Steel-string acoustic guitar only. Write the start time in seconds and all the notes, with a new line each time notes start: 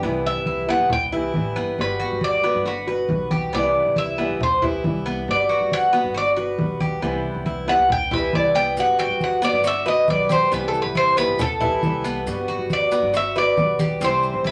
0.03 C3 E3 G3 B3 E4
0.69 E3 G3 B3 E4
0.92 muted steel-string acoustic guitar stroke
1.12 E3 G3 B3 E4
1.35 E3 G3 B3 E4
1.78 G3 B3 F#4
2.44 B3 F#4
2.66 muted steel-string acoustic guitar stroke
2.87 B3 F#4
3.09 G3 B3 F#4
3.53 C3 E3 G3 B3 E4
4.18 E3 G3 B3 E4
4.40 muted steel-string acoustic guitar stroke
4.62 E3 G3 B3 E4
4.85 E3 G3 B3 E4
5.28 G3 B3 F#4
5.93 B3 F#4
6.16 muted steel-string acoustic guitar stroke
6.37 B3 F#4
6.59 G3 B3 F#4
7.02 C3 E3 G3 B3 E4
7.67 E3 G3 B3 E4
7.90 muted steel-string acoustic guitar stroke
8.11 E3 G3 B3 E4
8.33 E3 G3 B3 E4
8.77 G3 B3 F#4
9.42 B3 F#4
9.64 muted steel-string acoustic guitar stroke
9.86 B3 F#4
10.07 G3 B3 F#4
10.51 C3 E3 G3 B3 E4
11.17 E3 G3 B3 E4
11.39 muted steel-string acoustic guitar stroke
11.61 E3 G3 B3 E4
11.83 E3 G3 B3 E4
12.26 G3 B3 F#4
12.92 B3 F#4
13.14 muted steel-string acoustic guitar stroke
13.36 B3 F#4
13.57 G3 B3 F#4
14.01 C3 E3 G3 E4